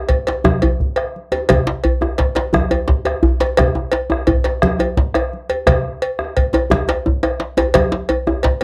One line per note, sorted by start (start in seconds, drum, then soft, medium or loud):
0.09 bombo low medium
0.09 cowbell soft
0.27 bombo rim soft
0.27 cowbell soft
0.27 djembe slap medium
0.44 bombo rim medium
0.44 djembe slap medium
0.44 high conga medium
0.44 djembe bass medium
0.44 low conga medium
0.62 cowbell soft
0.62 djembe slap soft
0.62 djembe tone medium
0.62 djembe bass medium
0.80 bombo low medium
0.80 high conga soft
0.96 bombo rim medium
0.96 cowbell soft
1.16 high conga soft
1.32 cowbell soft
1.32 djembe slap medium
1.32 djembe tone medium
1.49 bombo rim medium
1.49 bombo low medium
1.49 cowbell medium
1.49 high conga medium
1.49 djembe bass medium
1.49 low conga medium
1.67 djembe slap medium
1.84 cowbell soft
1.84 djembe bass medium
2.01 bombo rim medium
2.01 djembe tone medium
2.18 bombo rim soft
2.18 bombo low medium
2.18 cowbell soft
2.18 djembe slap medium
2.35 cowbell soft
2.35 djembe slap medium
2.35 high conga soft
2.53 bombo rim medium
2.53 djembe slap soft
2.53 high conga medium
2.53 djembe bass medium
2.53 low conga medium
2.70 cowbell soft
2.70 djembe tone medium
2.70 djembe bass soft
2.88 bombo rim soft
2.88 bombo low medium
2.88 djembe slap medium
2.88 djembe bass soft
3.05 bombo rim medium
3.05 cowbell soft
3.05 djembe bass medium
3.23 bombo rim soft
3.23 djembe slap medium
3.23 djembe bass medium
3.40 cowbell soft
3.40 djembe slap medium
3.40 high conga soft
3.57 bombo rim loud
3.57 bombo low loud
3.57 cowbell medium
3.57 high conga medium
3.57 djembe bass medium
3.57 low conga medium
3.75 djembe tone medium
3.92 cowbell medium
3.92 djembe slap medium
4.10 bombo rim medium
4.10 djembe tone medium
4.27 bombo low loud
4.27 cowbell soft
4.27 djembe bass loud
4.44 bombo rim soft
4.44 cowbell soft
4.44 djembe slap medium
4.62 bombo rim loud
4.62 high conga medium
4.62 djembe bass medium
4.62 low conga medium
4.79 cowbell soft
4.79 djembe tone medium
4.79 djembe tone soft
4.97 bombo low loud
4.97 djembe slap medium
5.14 bombo rim medium
5.14 cowbell soft
5.14 djembe tone medium
5.33 high conga soft
5.49 cowbell soft
5.49 djembe tone medium
5.67 bombo rim loud
5.67 bombo low loud
5.67 cowbell medium
5.67 high conga medium
5.67 djembe bass medium
5.67 low conga medium
6.02 cowbell soft
6.19 bombo rim medium
6.19 djembe tone medium
6.37 bombo low loud
6.37 cowbell soft
6.53 bombo rim soft
6.53 cowbell soft
6.53 djembe slap medium
6.53 djembe tone medium
6.70 bombo rim medium
6.70 djembe slap medium
6.70 high conga medium
6.70 djembe bass medium
6.70 low conga medium
6.88 cowbell soft
6.88 djembe slap soft
6.88 djembe slap medium
6.88 djembe tone medium
7.06 bombo low medium
7.06 djembe tone medium
7.06 high conga soft
7.23 bombo rim medium
7.23 cowbell soft
7.23 djembe tone medium
7.40 djembe slap medium
7.40 high conga soft
7.57 cowbell medium
7.57 djembe slap medium
7.57 djembe tone medium
7.57 djembe tone loud
7.74 bombo rim medium
7.74 bombo low medium
7.74 cowbell medium
7.74 djembe slap medium
7.74 high conga medium
7.74 djembe bass medium
7.74 low conga medium
7.92 djembe slap medium
8.09 cowbell medium
8.09 djembe tone medium
8.27 bombo rim medium
8.27 djembe tone medium
8.43 bombo low medium
8.43 cowbell soft
8.43 djembe slap medium